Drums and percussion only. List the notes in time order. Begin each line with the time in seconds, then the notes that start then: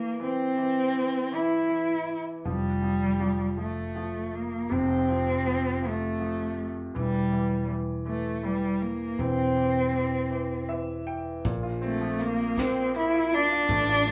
11.45 kick, closed hi-hat
11.82 closed hi-hat
12.20 closed hi-hat
12.57 kick, snare, closed hi-hat
12.94 closed hi-hat
13.32 closed hi-hat
13.68 kick, closed hi-hat
14.06 closed hi-hat